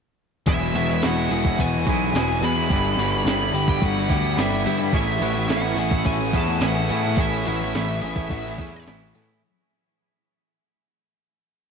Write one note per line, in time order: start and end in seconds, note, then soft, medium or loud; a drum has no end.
0.46 0.73 E1 medium
0.46 0.75 E2 medium
0.46 0.89 E2 medium
0.46 0.89 B2 loud
0.46 0.77 B2 loud
0.46 0.78 E3 loud
0.46 0.63 F#3 loud
0.46 0.62 G#3 medium
0.46 0.62 B3 loud
0.46 0.61 E4 loud
0.46 0.75 G#4 medium
0.46 1.05 E5 loud
0.46 kick loud
0.46 open hi-hat medium
0.62 0.74 F#3 medium
0.62 0.74 G#3 medium
0.62 0.77 B3 medium
0.62 0.77 E4 medium
0.74 1.01 E1 loud
0.74 1.03 E2 medium
0.74 1.03 F#3 medium
0.74 1.03 G#3 medium
0.74 1.05 B3 medium
0.74 1.03 F#4 medium
0.74 open hi-hat medium
0.78 0.92 B2 medium
0.78 0.90 E3 medium
0.78 1.05 E4 medium
0.91 1.05 B2 medium
0.91 1.07 E3 medium
1.02 1.30 E1 medium
1.02 1.44 E2 loud
1.02 1.58 E2 medium
1.02 1.45 B2 medium
1.02 1.47 B2 loud
1.02 1.19 F#3 loud
1.02 1.18 G#3 loud
1.02 1.18 B3 loud
1.02 1.63 E4 medium
1.02 1.17 E4 loud
1.02 snare loud
1.02 open hi-hat medium
1.06 1.45 E3 loud
1.06 1.61 F#5 medium
1.17 1.31 F#3 medium
1.17 1.32 G#3 medium
1.17 1.32 B3 medium
1.17 1.33 E4 medium
1.30 1.58 E1 medium
1.30 1.58 E2 medium
1.30 1.59 B2 medium
1.30 1.60 E3 medium
1.30 1.59 G#4 medium
1.30 muted clean electric guitar stroke soft
1.30 open hi-hat medium
1.45 1.60 B2 medium
1.45 1.62 E3 medium
1.45 1.85 F#3 medium
1.45 1.87 G#3 medium
1.45 1.88 B3 medium
1.45 1.89 E4 medium
1.45 kick loud
1.59 1.85 E1 medium
1.59 1.86 E2 medium
1.59 1.76 B2 medium
1.59 1.74 E3 medium
1.59 1.87 F#4 medium
1.59 2.46 G#5 loud
1.59 kick medium
1.59 open hi-hat medium
1.74 1.88 B2 medium
1.74 1.89 E3 medium
1.87 2.13 B1 loud
1.87 2.14 E2 medium
1.87 2.03 B2 medium
1.87 2.01 E3 medium
1.87 2.14 F#3 medium
1.87 2.14 G#3 medium
1.87 2.15 B3 medium
1.87 2.16 E4 medium
1.87 2.14 G#4 medium
1.87 kick medium
1.87 open hi-hat medium
2.02 2.16 B2 medium
2.02 2.18 E3 medium
2.13 2.41 E1 medium
2.13 2.56 E2 loud
2.13 2.41 E2 loud
2.13 2.56 B2 medium
2.13 2.43 B2 loud
2.13 2.30 F#3 medium
2.13 2.30 G#3 medium
2.13 2.30 B3 loud
2.13 2.29 E4 loud
2.13 2.41 G#4 medium
2.13 snare loud
2.13 open hi-hat medium
2.18 2.44 E3 loud
2.29 2.41 F#3 medium
2.29 2.42 G#3 medium
2.29 2.44 B3 medium
2.29 2.45 E4 medium
2.41 2.68 E2 loud
2.41 2.68 E2 medium
2.41 2.58 B2 medium
2.41 2.56 E3 medium
2.41 2.59 F#3 medium
2.41 2.58 G#3 medium
2.41 2.58 B3 medium
2.41 2.70 G#4 medium
2.41 3.28 B5 loud
2.41 open hi-hat medium
2.45 2.57 E4 medium
2.56 2.70 B2 medium
2.56 2.72 E3 medium
2.56 2.70 G#3 medium
2.56 2.73 B3 medium
2.56 2.73 E4 medium
2.61 2.71 F#3 medium
2.69 2.96 G1 medium
2.69 2.97 G2 medium
2.69 3.12 G2 medium
2.69 2.98 D3 loud
2.69 3.13 D3 medium
2.69 2.88 E3 loud
2.69 2.99 G3 loud
2.69 2.87 G3 loud
2.69 2.98 G4 medium
2.69 kick loud
2.69 open hi-hat medium
2.74 2.86 B3 loud
2.74 2.85 E4 loud
2.85 2.99 E3 medium
2.85 2.99 G3 medium
2.85 3.01 B3 medium
2.85 3.02 E4 medium
2.97 3.24 G1 medium
2.97 3.26 G2 medium
2.97 3.14 D3 medium
2.97 3.26 E3 medium
2.97 3.26 G3 medium
2.97 3.12 G3 medium
2.97 3.26 F#4 medium
2.97 open hi-hat medium
3.01 3.28 B3 medium
3.01 3.28 E4 medium
3.13 3.27 D3 medium
3.13 3.28 G3 medium
3.25 3.52 G1 medium
3.25 3.68 G2 loud
3.25 3.81 G2 medium
3.25 3.68 D3 loud
3.25 3.70 D3 medium
3.25 3.42 E3 medium
3.25 3.40 G3 loud
3.25 3.41 B3 loud
3.25 3.84 E4 medium
3.25 3.39 E4 loud
3.25 snare loud
3.25 open hi-hat medium
3.29 3.68 G3 loud
3.29 3.67 B5 medium
3.39 3.53 E3 medium
3.39 3.52 G3 medium
3.39 3.53 B3 medium
3.39 3.54 E4 medium
3.53 3.80 G1 medium
3.53 3.79 G2 medium
3.53 3.80 D3 medium
3.53 3.80 G3 loud
3.53 3.81 G4 medium
3.53 muted clean electric guitar stroke medium
3.53 open hi-hat medium
3.67 4.07 E3 medium
3.67 4.07 G3 medium
3.67 3.83 G3 medium
3.67 4.09 B3 medium
3.67 4.09 E4 medium
3.67 3.83 G5 medium
3.67 kick medium
3.71 3.83 D3 medium
3.81 4.09 G1 loud
3.81 4.08 G2 medium
3.81 3.97 D3 medium
3.81 3.95 G3 medium
3.81 4.09 F#4 medium
3.81 kick loud
3.81 open hi-hat medium
3.86 4.41 F#5 loud
3.96 4.10 D3 medium
3.96 4.11 G3 medium
4.07 4.37 D2 medium
4.07 4.36 G2 medium
4.07 4.25 D3 medium
4.07 4.36 E3 medium
4.07 4.35 G3 medium
4.07 4.37 B3 medium
4.07 4.37 E4 medium
4.07 4.37 G4 medium
4.07 kick medium
4.07 open hi-hat medium
4.12 4.23 G3 medium
4.24 4.37 D3 medium
4.24 4.38 G3 medium
4.34 4.78 G2 medium
4.34 4.65 G2 loud
4.34 4.79 D3 medium
4.34 4.66 D3 loud
4.34 4.52 E3 loud
4.34 4.51 G3 loud
4.34 4.51 B3 loud
4.34 4.50 E4 loud
4.34 4.65 G4 medium
4.34 open hi-hat medium
4.39 4.65 G1 medium
4.39 4.68 G3 loud
4.39 4.78 E5 medium
4.39 snare loud
4.50 4.63 E3 medium
4.50 4.63 G3 medium
4.50 4.65 B3 medium
4.50 4.66 E4 medium
4.63 4.92 G2 medium
4.63 4.93 G2 medium
4.63 4.80 E3 medium
4.63 4.79 G3 medium
4.63 4.80 B3 medium
4.63 4.78 E4 medium
4.63 4.93 G4 medium
4.63 open hi-hat medium
4.67 4.81 D3 medium
4.67 4.78 G3 medium
4.78 4.93 D3 medium
4.78 4.92 E3 medium
4.78 4.92 G3 medium
4.78 4.93 B3 medium
4.78 4.94 E4 medium
4.91 5.19 A1 medium
4.91 5.47 A2 medium
4.91 5.21 A2 medium
4.91 5.20 E3 medium
4.91 5.23 E3 loud
4.91 5.07 B3 loud
4.91 5.06 C#4 loud
4.91 5.05 E4 loud
4.91 5.22 G#4 medium
4.91 kick loud
4.91 open hi-hat medium
4.96 5.24 A3 loud
4.96 5.53 E5 medium
5.05 5.21 B3 medium
5.05 5.22 C#4 medium
5.05 5.22 E4 medium
5.20 5.48 A1 loud
5.20 5.48 A2 medium
5.20 5.48 E3 medium
5.20 5.38 E3 medium
5.20 5.49 B3 medium
5.20 5.50 C#4 medium
5.20 5.50 E4 medium
5.20 5.50 F#4 medium
5.20 open hi-hat medium
5.24 5.34 A3 medium
5.35 5.50 E3 medium
5.35 5.51 A3 medium
5.48 5.75 A1 loud
5.48 5.97 A2 loud
5.48 6.04 A2 medium
5.48 5.79 E3 loud
5.48 5.93 E3 loud
5.48 5.91 A3 loud
5.48 5.63 B3 loud
5.48 5.63 C#4 loud
5.48 5.61 E4 loud
5.48 6.08 E4 medium
5.48 snare loud
5.48 open hi-hat medium
5.52 6.07 F#5 medium
5.61 5.79 B3 medium
5.61 5.79 C#4 medium
5.61 5.79 E4 medium
5.76 6.04 A1 medium
5.76 6.05 A2 medium
5.76 6.06 E3 medium
5.76 6.07 A3 medium
5.76 6.05 G#4 medium
5.76 muted clean electric guitar stroke medium
5.76 open hi-hat medium
5.90 6.06 E3 medium
5.90 6.07 A3 medium
5.90 6.34 B3 medium
5.90 6.34 C#4 medium
5.90 6.35 E4 medium
5.90 kick medium
6.04 6.33 A1 medium
6.04 6.33 A2 medium
6.04 6.21 E3 medium
6.04 6.19 A3 medium
6.04 6.34 F#4 medium
6.04 6.35 G#5 loud
6.04 kick medium
6.04 open hi-hat medium
6.19 6.34 E3 medium
6.19 6.36 A3 medium
6.33 6.61 E2 medium
6.33 6.62 A2 medium
6.33 6.61 E3 medium
6.33 6.50 E3 medium
6.33 6.48 A3 medium
6.33 6.61 B3 medium
6.33 6.62 C#4 medium
6.33 6.63 E4 medium
6.33 6.63 G#4 medium
6.33 kick medium
6.33 open hi-hat medium
6.37 6.65 A5 medium
6.48 6.63 E3 medium
6.48 6.65 A3 medium
6.60 6.89 A1 medium
6.60 7.09 A2 medium
6.60 6.89 A2 medium
6.60 6.90 E3 medium
6.60 6.91 E3 loud
6.60 6.77 B3 loud
6.60 6.76 C#4 loud
6.60 6.75 E4 loud
6.60 6.89 G#4 medium
6.60 snare loud
6.60 open hi-hat medium
6.65 6.93 A3 loud
6.65 7.22 F#5 medium
6.75 6.91 B3 medium
6.75 6.92 C#4 medium
6.75 6.92 E4 medium
6.89 7.17 A2 medium
6.89 7.16 A2 loud
6.89 7.16 E3 medium
6.89 7.06 E3 medium
6.89 7.05 B3 medium
6.89 7.04 C#4 medium
6.89 7.01 E4 medium
6.89 7.18 G#4 medium
6.89 open hi-hat medium
6.93 7.04 A3 medium
7.03 7.20 A3 medium
7.03 7.17 B3 medium
7.03 7.17 C#4 medium
7.03 7.18 E4 medium
7.07 7.19 E3 medium
7.16 7.44 A1 medium
7.16 7.59 A2 loud
7.16 7.45 A2 medium
7.16 7.44 E3 medium
7.16 7.33 B3 loud
7.16 7.32 C#4 loud
7.16 7.30 E4 loud
7.16 7.46 G#4 medium
7.16 kick loud
7.16 open hi-hat medium
7.20 7.47 E3 loud
7.20 7.48 A3 loud
7.20 8.83 E5 medium
7.31 7.44 B3 medium
7.31 7.46 C#4 medium
7.31 7.47 E4 medium
7.45 7.74 A1 medium
7.45 7.74 A2 medium
7.45 7.74 E3 medium
7.45 7.62 E3 medium
7.45 7.74 B3 medium
7.45 7.76 C#4 medium
7.45 7.76 E4 medium
7.45 7.75 F#4 medium
7.45 open hi-hat medium
7.50 7.60 A3 medium
7.61 7.75 E3 medium
7.61 7.77 A3 medium
7.74 8.02 A1 medium
7.74 8.16 A2 loud
7.74 8.28 A2 medium
7.74 8.01 E3 loud
7.74 8.18 E3 medium
7.74 8.15 A3 loud
7.74 7.89 B3 loud
7.74 7.88 C#4 loud
7.74 8.02 E4 medium
7.74 7.87 E4 loud
7.74 snare loud
7.74 open hi-hat medium
7.88 8.01 B3 medium
7.88 8.02 C#4 medium
7.88 8.02 E4 medium
8.01 8.29 A1 medium
8.01 8.30 A2 medium
8.01 8.31 E3 medium
8.01 8.32 A3 medium
8.01 8.30 G#4 medium
8.01 muted clean electric guitar stroke soft
8.01 open hi-hat medium
8.16 8.29 E3 medium
8.16 8.31 A3 medium
8.16 8.58 B3 medium
8.16 8.58 C#4 medium
8.16 8.60 E4 medium
8.16 kick medium
8.29 8.57 A1 medium
8.29 8.57 A2 medium
8.29 8.45 E3 medium
8.29 8.42 A3 medium
8.29 8.59 F#4 medium
8.29 kick loud
8.29 open hi-hat medium
8.44 8.59 E3 medium
8.44 8.60 A3 medium
8.57 8.85 E2 medium
8.57 8.85 A2 medium
8.57 8.86 E3 medium
8.57 8.74 E3 medium
8.57 8.72 A3 medium
8.57 8.86 B3 medium
8.57 8.87 C#4 medium
8.57 8.87 E4 medium
8.57 8.85 G#4 medium
8.57 kick medium
8.57 open hi-hat medium
8.73 8.87 E3 medium
8.73 8.88 A3 medium
8.86 9.13 A1 medium
8.86 9.28 A2 medium
8.86 9.13 A2 loud
8.86 9.14 E3 medium
8.86 9.14 E3 loud
8.86 9.16 A3 loud
8.86 9.02 B3 medium
8.86 9.01 C#4 loud
8.86 9.00 E4 loud
8.86 9.14 G#4 medium
8.86 snare loud
8.86 open hi-hat medium
9.01 9.16 B3 medium
9.01 9.16 C#4 medium
9.01 9.17 E4 medium
9.15 9.41 A2 medium
9.15 9.42 A2 loud
9.15 9.41 E3 medium
9.15 9.31 E3 medium
9.15 9.29 A3 medium
9.15 9.31 B3 medium
9.15 9.30 C#4 medium
9.15 9.28 E4 medium
9.15 9.43 G#4 medium
9.15 open hi-hat medium
9.29 9.43 E3 medium
9.29 9.42 A3 medium
9.29 9.42 C#4 medium
9.29 9.41 E4 medium